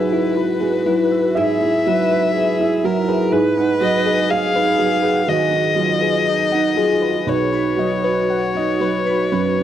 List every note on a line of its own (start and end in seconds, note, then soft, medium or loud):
0.00 1.31 G#2 medium
0.00 0.25 F#3 medium
0.00 0.36 E4 medium
0.00 0.60 E4 soft
0.00 0.11 B4 medium
0.00 1.38 B4 medium
0.11 0.26 E4 medium
0.11 0.90 B4 medium
0.35 1.38 F#4 medium
0.35 0.51 B4 medium
0.60 1.00 E4 soft
0.60 0.76 G#4 medium
0.85 1.26 F#3 soft
0.85 1.01 E4 medium
1.11 1.51 B4 soft
1.11 1.26 E5 medium
1.35 3.29 G#2 medium
1.35 1.52 E4 medium
1.35 1.88 G#4 medium
1.35 3.28 E5 medium
1.35 3.33 E5 medium
1.62 2.01 E4 medium
1.86 2.25 F#3 medium
1.86 2.34 B4 medium
2.11 2.26 E4 medium
2.11 2.89 B4 medium
2.35 2.87 G#4 medium
2.35 2.51 B4 medium
2.59 2.99 E4 medium
2.59 2.75 E5 medium
2.84 3.23 F#3 medium
2.84 2.99 E4 medium
2.84 3.34 A#4 medium
3.08 3.23 G#4 medium
3.08 3.33 B4 medium
3.32 5.23 G#2 medium
3.32 3.48 G#4 medium
3.32 4.31 B4 medium
3.57 3.96 D#4 medium
3.57 3.72 F#5 medium
3.80 4.20 F#3 medium
3.80 3.96 B4 medium
3.80 4.26 D#5 medium
3.80 4.31 D#5 medium
4.05 4.20 G#4 medium
4.05 4.83 B4 medium
4.30 5.27 G#4 medium
4.30 4.45 D#5 medium
4.30 5.30 F5 medium
4.30 5.24 F5 medium
4.53 4.92 D#4 medium
4.53 4.70 B4 medium
4.78 5.17 F#3 soft
4.78 4.94 G#4 medium
5.02 5.42 B4 medium
5.02 5.19 F#5 medium
5.27 5.67 D#3 medium
5.27 5.76 F#4 medium
5.27 5.43 G#4 medium
5.27 7.30 D#5 medium
5.27 7.24 D#5 medium
5.50 5.91 D#4 medium
5.75 6.16 F#3 medium
5.75 6.29 F4 medium
6.00 6.17 G#4 medium
6.00 6.81 B4 medium
6.27 6.78 D#4 medium
6.27 6.42 D#5 medium
6.51 6.92 D#4 medium
6.51 6.67 F#5 medium
6.75 7.17 F#3 soft
6.75 7.27 F4 medium
6.75 6.92 G#4 medium
7.01 7.27 B4 soft
7.01 7.17 B4 medium
7.26 9.28 B1 medium
7.26 9.63 F#4 medium
7.26 7.43 B4 medium
7.26 9.63 C#5 medium
7.51 7.93 D#4 soft
7.51 7.68 B5 medium
7.77 8.19 F#3 soft
7.77 7.94 D#5 medium
8.03 8.86 B4 soft
8.03 8.20 B4 medium
8.30 8.45 F#5 medium
8.55 8.96 D#4 soft
8.55 8.72 D#5 medium
8.80 9.22 F#3 soft
8.80 8.97 B4 medium
9.06 9.47 B4 soft
9.06 9.22 B5 medium
9.32 9.63 F#2 soft
9.32 9.48 B4 medium
9.58 9.63 D#4 soft